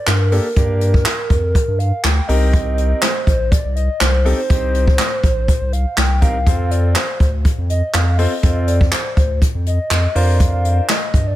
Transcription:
0.07 0.40 G2 medium
0.07 0.44 A#4 loud
0.07 snare loud
0.07 clap loud
0.07 closed hi-hat medium
0.32 0.45 A#3 medium
0.32 0.45 D4 medium
0.32 0.45 G4 medium
0.32 0.45 A4 medium
0.32 open hi-hat medium
0.44 1.80 A#4 loud
0.56 1.05 G2 loud
0.56 1.06 A#3 medium
0.56 1.06 D4 medium
0.56 1.06 G4 medium
0.56 1.06 A#4 medium
0.56 kick loud
0.56 closed hi-hat loud
0.81 closed hi-hat medium
0.94 kick loud
1.05 snare loud
1.05 clap loud
1.05 closed hi-hat loud
1.30 1.55 F2 loud
1.30 kick loud
1.30 closed hi-hat medium
1.55 kick loud
1.55 closed hi-hat loud
1.68 1.92 G2 medium
1.79 2.04 F5 loud
1.79 closed hi-hat medium
2.03 2.20 D2 medium
2.03 2.29 G5 loud
2.03 snare loud
2.03 clap loud
2.03 closed hi-hat medium
2.28 2.94 C2 loud
2.28 3.08 C4 medium
2.28 3.08 D#4 medium
2.28 3.08 G4 medium
2.28 3.08 A#4 medium
2.28 3.03 D#5 loud
2.28 open hi-hat medium
2.53 kick loud
2.53 closed hi-hat medium
2.78 closed hi-hat medium
3.02 3.26 C5 loud
3.02 snare loud
3.02 clap loud
3.02 closed hi-hat loud
3.27 3.52 A#1 loud
3.27 3.53 C5 loud
3.27 kick loud
3.27 closed hi-hat medium
3.51 3.75 D5 loud
3.51 kick loud
3.51 closed hi-hat loud
3.65 3.89 C2 medium
3.76 4.01 D#5 loud
3.76 closed hi-hat medium
4.00 4.33 C2 medium
4.00 4.37 C5 loud
4.00 snare loud
4.00 clap loud
4.00 closed hi-hat medium
4.25 4.38 C4 medium
4.25 4.38 D#4 medium
4.25 4.38 G4 medium
4.25 4.39 A4 medium
4.25 open hi-hat medium
4.38 5.74 C5 loud
4.50 4.99 C2 loud
4.50 4.99 C4 medium
4.50 4.99 D#4 medium
4.50 4.99 G4 medium
4.50 4.99 C5 medium
4.50 kick loud
4.50 closed hi-hat loud
4.74 closed hi-hat medium
4.87 kick loud
4.99 snare loud
4.99 clap loud
4.99 closed hi-hat loud
5.24 5.48 A#1 loud
5.24 kick loud
5.24 closed hi-hat medium
5.48 kick loud
5.48 closed hi-hat loud
5.61 5.85 C2 medium
5.73 5.96 F5 loud
5.73 closed hi-hat medium
5.97 6.48 C2 medium
5.97 6.23 G5 loud
5.97 snare loud
5.97 clap loud
5.97 closed hi-hat medium
6.21 6.35 C4 medium
6.21 6.35 D#4 medium
6.21 6.35 G4 medium
6.21 6.35 A#4 medium
6.21 6.72 F5 loud
6.21 kick medium
6.21 closed hi-hat medium
6.46 6.95 F2 loud
6.46 6.96 C4 medium
6.46 6.96 F4 medium
6.46 6.96 A4 medium
6.46 6.96 C5 medium
6.46 kick loud
6.46 closed hi-hat loud
6.71 6.97 D5 medium
6.71 closed hi-hat medium
6.95 7.19 C5 loud
6.95 snare loud
6.95 clap loud
6.95 closed hi-hat loud
7.20 7.45 D2 loud
7.20 7.31 C5 medium
7.20 kick loud
7.20 closed hi-hat medium
7.45 kick loud
7.45 closed hi-hat loud
7.58 7.82 F2 medium
7.69 7.95 D#5 loud
7.69 closed hi-hat medium
7.94 8.27 F2 medium
7.94 8.19 F5 loud
7.94 snare loud
7.94 clap loud
7.94 closed hi-hat medium
8.18 8.32 C4 medium
8.18 8.32 F4 medium
8.18 8.32 A4 medium
8.18 8.32 C5 medium
8.18 8.67 D#5 loud
8.18 open hi-hat medium
8.43 8.92 F2 loud
8.43 8.92 C4 medium
8.43 8.93 F4 medium
8.43 8.93 A4 medium
8.43 8.93 C5 medium
8.43 kick loud
8.43 closed hi-hat loud
8.67 8.93 D5 loud
8.67 closed hi-hat medium
8.81 kick loud
8.92 9.16 C5 loud
8.92 snare loud
8.92 clap loud
8.92 closed hi-hat loud
9.16 9.42 D2 loud
9.16 9.40 C5 medium
9.16 kick loud
9.16 closed hi-hat medium
9.42 kick loud
9.42 closed hi-hat loud
9.55 9.79 F2 medium
9.66 10.17 D#5 loud
9.66 closed hi-hat medium
9.91 10.07 F2 medium
9.91 snare loud
9.91 clap loud
9.91 closed hi-hat medium
10.15 10.80 F2 loud
10.15 10.94 D4 medium
10.15 10.94 F4 medium
10.15 10.95 A#4 medium
10.15 10.95 C5 medium
10.15 10.89 F5 loud
10.15 open hi-hat medium
10.40 kick loud
10.40 closed hi-hat loud
10.65 closed hi-hat medium
10.89 11.29 D#5 loud
10.89 snare loud
10.89 clap loud
10.89 closed hi-hat loud
11.14 11.36 G2 loud
11.14 kick loud
11.14 closed hi-hat medium
11.27 11.36 D5 loud

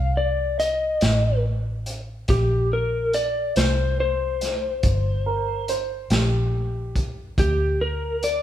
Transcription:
0.00 0.98 C2 medium
0.00 0.16 F5 medium
0.17 0.58 D5 medium
0.60 1.42 D#5 loud
0.60 closed hi-hat soft
1.01 2.25 A1 medium
1.01 snare loud
1.01 closed hi-hat medium
1.86 closed hi-hat soft
2.28 3.52 A#1 medium
2.28 2.71 G4 medium
2.28 kick medium
2.28 snare soft
2.28 closed hi-hat medium
2.73 3.13 A#4 medium
3.13 3.55 D5 medium
3.13 closed hi-hat medium
3.56 4.80 C2 medium
3.56 3.98 C5 medium
3.56 snare loud
3.56 closed hi-hat medium
4.00 5.65 C5 medium
4.41 snare soft
4.41 closed hi-hat medium
4.83 6.07 G1 medium
4.83 kick medium
4.83 closed hi-hat medium
5.26 5.67 A#4 medium
5.68 6.10 C5 medium
5.68 closed hi-hat medium
6.10 7.34 A#1 medium
6.10 7.14 G4 medium
6.10 snare loud
6.10 closed hi-hat medium
6.96 kick medium
6.96 closed hi-hat soft
7.38 8.43 D2 medium
7.38 7.79 G4 medium
7.38 kick loud
7.38 closed hi-hat medium
7.81 8.22 A#4 medium
8.23 8.43 D5 medium
8.23 closed hi-hat medium

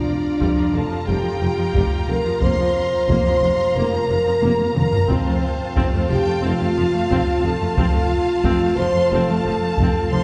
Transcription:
0.00 0.70 F2 medium
0.00 0.72 D4 medium
0.00 5.04 F4 medium
0.00 0.74 D5 medium
0.00 5.08 F5 soft
0.00 5.09 A#5 soft
0.40 0.47 F1 medium
0.40 0.47 F2 medium
0.40 0.56 G3 medium
0.40 taiko medium
0.56 0.64 F2 soft
0.56 0.63 F3 soft
0.73 0.81 F1 soft
0.73 0.81 F2 soft
0.73 0.80 D3 soft
0.73 1.08 A4 medium
0.73 1.08 A5 medium
0.90 0.98 F2 soft
0.90 0.97 F3 soft
1.07 1.14 F1 medium
1.07 1.15 F1 medium
1.07 1.14 F2 medium
1.07 1.23 G3 soft
1.07 1.93 G4 medium
1.07 2.09 G5 medium
1.24 1.31 F2 soft
1.24 1.31 F3 soft
1.40 1.47 F1 soft
1.40 1.49 F1 soft
1.40 1.47 F2 soft
1.40 1.48 D3 soft
1.57 1.64 F2 soft
1.57 1.65 F3 soft
1.74 1.81 F1 medium
1.74 1.82 F1 medium
1.74 1.81 F2 medium
1.74 1.90 G3 medium
1.74 taiko medium
2.08 2.14 F1 soft
2.08 2.16 F1 soft
2.08 2.15 F2 soft
2.08 2.16 D3 soft
2.08 2.42 A#4 medium
2.08 2.41 A#5 medium
2.25 2.31 F2 soft
2.25 2.33 F3 soft
2.41 2.48 F1 medium
2.41 2.49 F1 medium
2.41 2.48 F2 medium
2.41 3.38 F2 medium
2.41 2.58 A#3 medium
2.41 3.08 C5 medium
2.41 3.07 C6 medium
2.41 taiko medium
2.58 2.65 F2 medium
2.58 2.66 F3 soft
3.07 3.14 F1 medium
3.07 3.16 F1 medium
3.07 3.15 F2 medium
3.07 3.25 A#3 medium
3.07 3.75 C5 medium
3.07 3.74 C6 medium
3.07 taiko medium
3.25 3.32 F2 soft
3.25 3.34 F3 medium
3.41 3.48 F1 soft
3.41 3.49 F1 soft
3.41 3.49 F2 soft
3.41 3.50 C3 medium
3.59 3.66 F2 soft
3.59 3.67 F3 soft
3.75 3.82 F1 medium
3.75 3.83 F1 medium
3.75 3.83 F2 medium
3.75 3.92 A#3 medium
3.75 4.74 A#4 medium
3.75 4.74 A#5 medium
3.92 3.99 F2 soft
3.92 3.99 F3 soft
4.09 4.16 F1 soft
4.09 4.16 F1 medium
4.09 4.16 F2 soft
4.09 4.16 C3 medium
4.26 4.33 F2 soft
4.26 4.32 F3 medium
4.42 4.49 F1 medium
4.42 4.49 F2 medium
4.42 4.58 A#3 medium
4.42 taiko high medium
4.60 taiko high medium
4.75 4.82 F1 medium
4.75 4.83 F1 medium
4.75 4.83 F2 soft
4.75 4.82 C3 medium
4.75 5.08 A#4 medium
4.75 5.08 A#5 medium
4.75 taiko mid medium
4.92 5.00 F2 medium
4.92 4.99 F3 medium
4.92 taiko low medium
5.08 5.16 F1 medium
5.08 5.16 F2 medium
5.08 5.24 C4 medium
5.08 6.10 C4 medium
5.08 10.24 F4 medium
5.08 6.10 C5 medium
5.08 10.24 F5 medium
5.08 10.24 A5 medium
5.08 taiko medium
5.25 5.33 F2 medium
5.25 5.32 A3 medium
5.76 5.83 F1 medium
5.76 5.83 F2 medium
5.76 5.92 C4 medium
5.76 taiko medium
5.93 6.01 F2 soft
5.93 6.00 A3 medium
6.08 6.17 F1 medium
6.08 6.17 F2 soft
6.08 6.15 F3 medium
6.08 6.42 G4 medium
6.08 6.43 G5 medium
6.26 6.34 F2 soft
6.26 6.33 A3 medium
6.41 6.50 F1 medium
6.41 6.51 F1 medium
6.41 6.51 F2 medium
6.41 6.58 C4 medium
6.41 7.44 F4 medium
6.41 7.44 F5 medium
6.59 6.68 F2 medium
6.59 6.66 A3 medium
6.76 6.84 F1 soft
6.76 6.85 F1 medium
6.76 6.84 F2 medium
6.76 6.83 F3 medium
6.93 7.01 F2 soft
6.93 7.00 A3 medium
7.10 7.17 F1 medium
7.10 7.18 F1 medium
7.10 7.18 F2 medium
7.10 7.25 C4 medium
7.10 taiko medium
7.44 7.51 F1 soft
7.44 7.51 F1 medium
7.44 7.50 F2 medium
7.44 7.50 F3 medium
7.44 7.77 A4 medium
7.44 7.77 A5 medium
7.61 7.67 F2 medium
7.61 7.67 A3 medium
7.77 7.83 F1 medium
7.77 7.84 F1 medium
7.77 7.84 F2 medium
7.77 7.92 C4 medium
7.77 8.76 F4 loud
7.77 8.75 F5 medium
7.77 taiko medium
7.94 8.01 F2 medium
7.94 8.01 A3 soft
8.43 8.50 F1 medium
8.43 8.51 F1 medium
8.43 8.51 F2 medium
8.43 8.60 C4 medium
8.43 taiko medium
8.61 8.67 F2 medium
8.61 8.69 A3 medium
8.77 8.84 F1 medium
8.77 8.85 F1 medium
8.77 8.84 F2 medium
8.77 8.85 F3 medium
8.77 9.11 C5 medium
8.77 9.11 C6 medium
8.94 9.01 F2 medium
8.94 9.01 A3 medium
9.10 9.18 F1 medium
9.10 9.17 F2 medium
9.10 9.27 C4 medium
9.10 9.94 A4 medium
9.10 10.10 A5 medium
9.28 9.34 F2 medium
9.28 9.36 A3 medium
9.44 9.51 F1 medium
9.44 9.52 F1 medium
9.44 9.51 F2 medium
9.44 9.53 F3 medium
9.61 9.68 F2 soft
9.61 9.70 A3 medium
9.78 9.85 F1 medium
9.78 9.84 F2 medium
9.78 9.95 C4 medium
9.78 taiko medium
10.10 10.17 F1 soft
10.10 10.18 F1 medium
10.10 10.17 F2 soft
10.10 10.20 F3 soft
10.10 10.24 C5 medium
10.10 10.24 C6 medium

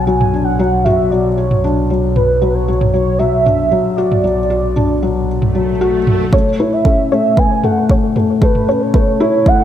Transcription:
0.00 6.30 B1 medium
0.00 0.07 F#3 medium
0.00 0.34 D4 medium
0.00 0.86 F#4 medium
0.05 0.32 F#3 medium
0.05 0.46 G#5 loud
0.21 mid tom medium
0.34 0.58 D4 medium
0.44 0.86 F#5 medium
0.59 0.84 F#3 medium
0.84 1.10 F#4 medium
0.84 1.12 E5 medium
0.84 mid tom medium
1.11 1.27 F#3 medium
1.11 1.38 D5 medium
1.36 1.62 F#4 medium
1.36 1.89 C#5 medium
1.51 mid tom medium
1.64 1.89 D4 medium
1.90 2.15 F#3 medium
2.16 2.56 B4 medium
2.16 mid tom medium
2.42 2.67 F#3 medium
2.54 2.92 C#5 medium
2.68 2.92 F#3 medium
2.81 mid tom medium
2.93 3.18 F#3 medium
2.93 3.20 C#5 medium
3.18 3.44 F#3 medium
3.18 3.98 E5 loud
3.45 3.71 D4 medium
3.45 mid tom medium
3.71 3.97 F#3 medium
3.96 4.23 F#4 medium
3.96 5.80 D5 loud
4.12 mid tom medium
4.24 4.39 F#3 medium
4.50 4.75 F#4 medium
4.76 5.01 D4 medium
4.76 mid tom medium
5.03 5.27 F#3 medium
5.28 swell medium
5.42 mid tom medium
5.55 5.70 F#3 medium
5.81 5.96 F#4 medium
6.07 mid tom medium
6.33 6.48 A3 medium
6.33 6.75 C#5 medium
6.33 6.39 C#5 medium
6.33 kick medium
6.60 6.84 E4 medium
6.60 6.65 B4 medium
6.73 7.12 E5 medium
6.85 7.10 C#4 medium
6.85 6.91 A4 medium
6.85 kick medium
7.12 7.36 A3 medium
7.12 7.17 C#5 medium
7.12 7.40 E5 loud
7.37 7.43 B4 loud
7.37 7.66 G#5 loud
7.37 kick medium
7.64 7.89 A3 medium
7.64 7.70 A4 medium
7.64 7.90 F#5 medium
7.64 mid tom medium
7.89 8.15 A3 medium
7.89 7.96 C#5 loud
7.89 kick medium
8.16 8.41 A3 medium
8.16 8.22 B4 medium
8.16 mid tom medium
8.42 8.67 A3 medium
8.42 8.48 A4 medium
8.42 8.83 B4 medium
8.42 kick loud
8.55 mid tom medium
8.68 8.93 C#4 medium
8.68 8.74 C#5 loud
8.82 9.21 C#5 medium
8.94 9.19 A3 medium
8.94 9.00 B4 medium
8.94 kick loud
9.20 9.45 E4 medium
9.20 9.26 A4 medium
9.20 9.49 C#5 loud
9.46 9.61 A3 medium
9.46 9.52 C#5 medium
9.46 9.64 F#5 loud
9.46 kick medium

